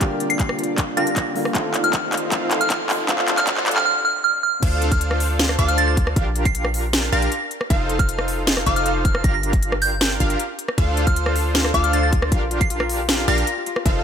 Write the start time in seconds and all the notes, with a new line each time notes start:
Already playing: F4 D5, riser
0.00 D3 G3 A#3 D4 F4 G4 A#4 F5, kick, clap, closed hi-hat
0.20 closed hi-hat
0.30 C7, closed hi-hat
0.39 kick, clap, closed hi-hat
0.49 cross-stick
0.59 closed hi-hat
0.64 closed hi-hat
0.78 kick, clap, closed hi-hat
0.96 D3 G3 A#3 D4 F4 G4 A#4 F5 A#6, closed hi-hat
1.07 closed hi-hat
1.16 kick, clap, closed hi-hat
1.34 D3 G3 A#3 F4, open hi-hat
1.45 cross-stick
1.53 D#3 A3 C4 D#4 F4 A4 C5 D#5 F5, kick, clap, closed hi-hat
1.57 F4
1.74 clap, closed hi-hat
1.84 F6, closed hi-hat
1.93 kick, clap, closed hi-hat
2.13 clap, closed hi-hat
2.17 closed hi-hat
2.30 D#3 A3 C4 D#4 F4 A4 C5 F5, kick, clap, closed hi-hat
2.34 F4
2.51 clap, closed hi-hat
2.61 F6, closed hi-hat
2.70 kick, clap, closed hi-hat
2.89 clap, open hi-hat
3.07 D3 A3 C4 D4 F4 A4 C5 F5, kick, clap, closed hi-hat
3.18 clap
3.28 clap, closed hi-hat
3.38 F6, clap, closed hi-hat
3.45 D3 A3 C4 D4 F4 A4 C5 F5, kick, clap, closed hi-hat
3.57 clap
3.66 clap, closed hi-hat
3.71 closed hi-hat
3.76 F6, clap
3.86 F6
4.05 F6
4.24 F6
4.43 F6
4.62 D2 D4 F4 A4 C5 F5, kick, closed hi-hat, crash
4.82 closed hi-hat
4.92 F6, kick, closed hi-hat
5.01 closed hi-hat
5.11 cross-stick
5.20 open hi-hat
5.39 snare, closed hi-hat
5.49 cross-stick
5.59 D2 D4 F4 A4 C5 F5 D6, kick, closed hi-hat
5.68 F6, closed hi-hat
5.78 A6, closed hi-hat
5.88 A6
5.97 kick, closed hi-hat
6.07 cross-stick
6.16 A#1 D4 F4 G4 A#4 F5, kick, closed hi-hat
6.36 closed hi-hat
6.45 C7, kick, closed hi-hat
6.55 closed hi-hat
6.65 cross-stick
6.74 open hi-hat
6.93 snare, closed hi-hat
7.12 A#1 D4 F4 G4 A#4 F5 A#6, closed hi-hat
7.22 closed hi-hat
7.32 closed hi-hat
7.51 closed hi-hat
7.61 cross-stick
7.70 F1 D#4 F4 A4 C5 F5, kick, closed hi-hat
7.89 closed hi-hat
7.99 F6, kick, closed hi-hat
8.09 closed hi-hat
8.19 cross-stick
8.28 open hi-hat
8.47 snare, closed hi-hat
8.57 cross-stick
8.66 F1 D#4 F4 A4 C5 F5 D6, kick, closed hi-hat
8.76 F6, closed hi-hat
8.86 closed hi-hat
9.05 F6, kick, closed hi-hat
9.15 cross-stick
9.24 G1 D4 F4 G4 A#4 F5 A#6, kick, closed hi-hat
9.34 A#6
9.43 closed hi-hat
9.53 kick, closed hi-hat
9.63 closed hi-hat
9.72 cross-stick
9.82 G6, open hi-hat
10.01 snare, closed hi-hat
10.20 G1 D4 F4 G4 A#4 F5, kick, closed hi-hat
10.30 closed hi-hat
10.39 closed hi-hat
10.59 closed hi-hat
10.68 cross-stick
10.78 D2 D4 F4 A4 C5 F5, kick, closed hi-hat
10.97 F4, closed hi-hat
11.07 C5 F6, kick, closed hi-hat
11.16 closed hi-hat
11.26 A4, cross-stick
11.36 F4, open hi-hat
11.55 F4, snare, closed hi-hat
11.65 C5, cross-stick
11.74 D2 D4 F4 A4 C5 F5 D6, kick, closed hi-hat
11.84 A4 F6, closed hi-hat
11.93 F4 A6, closed hi-hat
12.03 A6
12.13 F4, kick, closed hi-hat
12.22 C5, cross-stick
12.32 A#1 D4 F4 G4 A#4 F5, kick, closed hi-hat
12.42 G4
12.51 F4, closed hi-hat
12.61 C7, kick, closed hi-hat
12.70 F4, closed hi-hat
12.80 A#4, cross-stick
12.89 open hi-hat
12.99 G4
13.09 F4, snare, closed hi-hat
13.28 A#1 D4 F4 G4 A#4 F5 A#6, closed hi-hat
13.38 A#4, closed hi-hat
13.47 closed hi-hat
13.57 G4
13.66 F4, closed hi-hat
13.76 cross-stick
13.86 F1 D#4 F4 A4 C5 F5, kick, closed hi-hat
13.95 C5